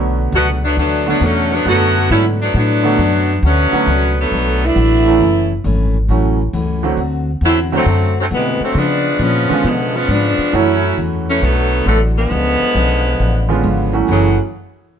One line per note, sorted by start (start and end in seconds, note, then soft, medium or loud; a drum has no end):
0.00 0.31 B1 medium
0.00 0.19 B2 soft
0.00 0.56 D3 medium
0.00 0.20 F#3 medium
0.00 0.56 F#3 medium
0.00 0.20 A3 medium
0.00 0.56 A3 medium
0.00 0.57 B3 medium
0.00 0.20 D4 medium
0.00 0.57 F#4 medium
0.32 0.76 C#2 medium
0.32 0.64 B2 medium
0.32 0.48 D3 medium
0.32 0.64 F#3 medium
0.32 0.65 A3 medium
0.32 0.48 A3 medium
0.32 0.48 B3 medium
0.32 0.65 D4 medium
0.32 0.48 F#4 loud
0.65 0.77 F#3 medium
0.65 0.77 A3 medium
0.65 0.77 B3 medium
0.65 0.77 D4 medium
0.77 1.20 D2 medium
0.77 1.09 B2 soft
0.77 1.09 F#3 medium
0.77 1.06 F#3 medium
0.77 1.09 A3 medium
0.77 1.06 A3 medium
0.77 1.06 B3 medium
0.77 1.06 D4 medium
0.77 1.10 D4 soft
1.06 1.20 D3 medium
1.06 1.20 F#3 medium
1.06 1.22 F#3 medium
1.06 1.20 A3 medium
1.06 1.22 A3 medium
1.06 1.20 B3 medium
1.06 1.22 B3 medium
1.06 1.22 D4 medium
1.06 1.20 F#4 medium
1.21 1.64 E2 medium
1.21 1.53 B2 medium
1.21 1.53 F#3 medium
1.21 1.52 F#3 medium
1.21 1.53 A3 medium
1.21 1.52 A3 medium
1.21 1.54 D4 medium
1.25 1.53 D3 medium
1.25 1.53 C#4 medium
1.53 1.67 F#3 medium
1.53 1.67 A3 medium
1.53 1.67 B3 medium
1.53 1.67 D4 medium
1.65 2.09 F#2 medium
1.65 1.97 B2 soft
1.65 2.34 D3 medium
1.65 2.08 D3 loud
1.65 2.34 F#3 medium
1.65 1.98 F#3 soft
1.65 2.34 A3 medium
1.65 1.98 A3 medium
1.65 2.08 A3 medium
1.65 2.35 B3 medium
1.65 2.08 B3 medium
1.65 1.98 D4 soft
1.65 2.34 F#4 medium
1.65 2.08 F#4 loud
2.10 2.53 G#2 medium
2.10 2.42 B2 medium
2.10 2.42 F#3 medium
2.10 2.25 F#3 medium
2.10 2.25 A3 medium
2.10 2.43 A3 medium
2.10 2.25 C#4 medium
2.10 2.43 D4 medium
2.10 2.25 E4 medium
2.42 2.55 F#3 medium
2.42 2.55 A3 medium
2.42 2.54 B3 medium
2.42 2.54 D4 medium
2.54 2.97 A2 medium
2.54 2.86 B2 soft
2.54 2.86 F#3 soft
2.54 3.40 F#3 medium
2.54 2.87 A3 medium
2.54 3.41 A3 medium
2.54 3.40 B3 medium
2.54 2.87 D4 medium
2.54 3.41 D4 medium
2.83 2.97 D3 medium
2.83 2.97 F#3 medium
2.83 2.97 A3 medium
2.83 2.97 B3 medium
2.83 2.98 F#4 medium
2.98 3.42 F#2 medium
2.98 3.30 B2 medium
2.98 3.31 F#3 medium
2.98 3.31 A3 medium
2.98 3.31 D4 medium
3.43 3.71 D2 medium
3.43 3.74 B2 soft
3.43 3.75 F#3 soft
3.43 4.15 F#3 medium
3.43 3.75 A3 medium
3.43 4.15 A3 medium
3.43 4.15 B3 medium
3.43 4.15 C#4 medium
3.43 3.76 D4 medium
3.72 3.86 D3 medium
3.72 3.86 F#3 medium
3.72 3.86 A3 medium
3.72 3.86 B3 medium
3.72 3.86 F#4 medium
3.72 muted upright bass stroke soft
3.86 4.30 C#2 medium
3.86 4.19 B2 medium
3.86 4.19 F#3 medium
3.86 4.19 A3 medium
3.86 4.20 D4 medium
4.20 4.64 D3 medium
4.20 4.63 F#3 medium
4.20 4.63 A3 medium
4.20 4.64 B3 medium
4.31 4.75 B1 medium
4.31 4.63 B2 soft
4.31 4.64 F#3 soft
4.31 4.64 A3 soft
4.31 4.64 D4 medium
4.65 5.53 A3 medium
4.65 5.52 B3 medium
4.65 5.23 D4 medium
4.65 5.52 E4 medium
4.76 5.19 A1 medium
4.76 5.07 B2 medium
4.76 5.08 F#3 medium
4.76 5.08 A3 medium
4.76 5.08 D4 medium
5.06 5.19 E3 medium
5.06 5.19 F#3 medium
5.06 5.19 A3 medium
5.06 5.20 C#4 medium
5.06 5.20 F#4 medium
5.20 5.63 F#1 medium
5.20 5.52 F#2 soft
5.20 5.52 E3 medium
5.20 5.52 A3 medium
5.20 5.53 C#4 medium
5.64 6.08 G#1 medium
5.64 5.96 F#2 medium
5.64 5.96 E3 medium
5.64 5.97 A3 medium
5.64 5.97 C#4 medium
6.09 6.52 A1 medium
6.09 6.41 F#2 medium
6.09 6.36 E3 medium
6.09 6.41 E3 medium
6.09 6.36 F#3 soft
6.09 6.37 A3 soft
6.09 6.41 A3 medium
6.09 6.37 C#4 soft
6.09 6.42 C#4 medium
6.09 6.37 F#4 medium
6.53 6.97 C#2 medium
6.53 6.85 F#2 medium
6.53 6.85 E3 medium
6.53 6.86 A3 medium
6.53 6.86 C#4 medium
6.83 6.96 D3 medium
6.83 6.97 F#3 medium
6.83 6.97 A3 medium
6.83 6.97 C4 medium
6.83 6.97 F#4 medium
6.97 7.41 D2 medium
6.97 7.29 D3 medium
6.97 7.30 A3 medium
6.97 7.30 C4 medium
6.97 7.30 F#4 medium
7.41 7.85 E2 medium
7.41 7.74 D3 medium
7.41 7.74 A3 medium
7.41 7.75 C4 medium
7.41 7.75 F#4 medium
7.46 7.58 F#3 medium
7.46 7.59 A3 medium
7.46 7.58 C4 medium
7.46 7.59 E4 loud
7.72 7.85 D3 medium
7.72 8.15 D3 medium
7.72 7.86 F#3 medium
7.72 8.15 F#3 medium
7.72 7.86 A3 medium
7.72 8.15 A3 medium
7.72 7.86 C4 medium
7.72 8.15 C4 medium
7.72 7.86 F#4 medium
7.86 8.29 F#2 medium
7.86 8.18 D3 soft
7.86 8.19 A3 medium
7.86 8.19 C4 medium
7.86 8.19 F#4 medium
8.20 8.26 D3 medium
8.20 8.26 F#3 medium
8.20 8.26 A3 medium
8.20 8.26 C4 medium
8.31 8.59 B2 medium
8.31 8.61 C3 medium
8.31 8.63 D3 medium
8.31 8.61 E3 medium
8.31 8.61 G#3 medium
8.31 8.63 A3 medium
8.31 8.61 B3 medium
8.31 8.63 C4 medium
8.31 8.63 F#4 medium
8.60 8.76 D3 medium
8.60 8.76 F#3 medium
8.60 8.76 A3 medium
8.60 8.76 C4 medium
8.60 muted upright bass stroke soft
8.75 9.18 C#3 medium
8.75 9.07 C#3 soft
8.75 9.07 F3 soft
8.75 9.21 F3 medium
8.75 9.21 G#3 medium
8.75 9.08 B3 medium
8.75 9.22 B3 medium
8.75 9.08 D4 medium
8.75 9.22 D4 medium
9.19 9.47 A#2 medium
9.19 9.51 C#3 medium
9.19 9.52 F3 medium
9.19 9.66 F3 medium
9.19 9.66 G#3 medium
9.19 9.52 B3 medium
9.19 9.66 B3 medium
9.19 9.66 C#4 medium
9.19 9.52 D4 medium
9.49 9.63 D3 medium
9.49 9.63 G#3 medium
9.49 9.63 B3 medium
9.49 9.63 C#4 medium
9.49 9.63 F4 medium
9.49 muted upright bass stroke soft
9.63 10.07 B2 medium
9.63 9.95 C#3 soft
9.63 9.96 D3 medium
9.63 9.96 F3 soft
9.63 9.95 F3 medium
9.63 9.95 G#3 medium
9.63 9.96 B3 medium
9.63 9.95 B3 medium
9.63 9.96 D4 medium
9.96 10.09 F3 medium
9.96 10.09 G#3 medium
9.96 10.10 B3 medium
9.96 10.10 C#4 medium
10.08 10.37 G#2 medium
10.08 10.40 C#3 medium
10.08 10.40 F3 medium
10.08 10.54 F3 medium
10.08 10.54 G#3 medium
10.08 10.41 B3 medium
10.08 10.54 B3 medium
10.08 10.41 D4 medium
10.08 10.54 D4 medium
10.38 muted upright bass stroke soft
10.52 10.96 F#2 medium
10.52 10.85 F#2 soft
10.52 11.42 E3 medium
10.52 10.85 E3 soft
10.52 11.42 F#3 soft
10.52 10.98 F#3 medium
10.52 11.42 A3 medium
10.52 10.98 A3 medium
10.52 10.86 A3 medium
10.52 11.42 C#4 soft
10.52 10.98 C#4 medium
10.52 10.86 C#4 medium
10.52 10.99 E4 loud
10.52 11.43 F#4 medium
10.98 11.41 E2 medium
10.98 11.29 F#2 medium
10.98 11.29 E3 medium
10.98 11.30 A3 medium
10.98 11.30 C#4 medium
11.29 11.42 E3 medium
11.29 11.42 F#3 medium
11.29 11.42 A3 medium
11.29 11.42 C#4 loud
11.42 11.85 B1 medium
11.42 11.73 B2 soft
11.42 11.86 D3 medium
11.42 11.74 F#3 soft
11.42 11.86 F#3 medium
11.42 11.86 A3 medium
11.42 11.74 A3 medium
11.42 11.87 B3 loud
11.42 11.75 D4 medium
11.86 12.29 A1 medium
11.86 12.18 B2 medium
11.86 12.00 B2 medium
11.86 12.00 D3 medium
11.86 12.18 F#3 medium
11.86 12.00 F#3 medium
11.86 12.18 A3 medium
11.86 12.01 A3 medium
11.86 12.19 D4 medium
12.18 13.61 D3 medium
12.18 13.61 F3 medium
12.18 13.61 G#3 medium
12.18 13.61 B3 loud
12.30 12.59 C#2 medium
12.30 12.62 C#3 soft
12.30 12.62 F3 soft
12.30 12.63 B3 medium
12.30 12.63 D4 medium
12.62 muted upright bass stroke soft
12.75 13.18 B1 medium
12.75 13.07 C#3 medium
12.75 13.07 F3 medium
12.75 13.07 B3 medium
12.75 13.07 D4 medium
13.19 13.63 A1 medium
13.19 13.51 C#3 medium
13.19 13.51 F3 medium
13.19 13.51 B3 medium
13.19 13.52 D4 medium
13.49 13.91 D3 medium
13.49 13.91 G#3 medium
13.49 13.91 B3 medium
13.49 13.91 C#4 medium
13.49 13.91 F4 medium
13.63 14.07 G#1 medium
13.63 13.95 C#3 medium
13.63 13.95 F3 medium
13.63 13.96 B3 medium
13.63 13.96 D4 medium
13.93 14.06 E3 medium
13.93 14.06 F#3 medium
13.93 14.07 A3 medium
13.93 14.07 C#4 medium
13.93 14.07 F#4 medium
14.07 14.37 F#1 medium
14.07 14.38 E2 medium
14.07 14.32 F#2 medium
14.07 14.38 C#3 medium
14.07 14.35 E3 medium
14.07 14.32 E3 medium
14.07 14.35 F#3 soft
14.07 14.38 F#3 medium
14.07 14.35 A3 medium
14.07 14.33 A3 medium
14.07 14.36 C#4 medium
14.07 14.33 C#4 medium
14.07 14.36 F#4 medium
14.11 14.38 A2 medium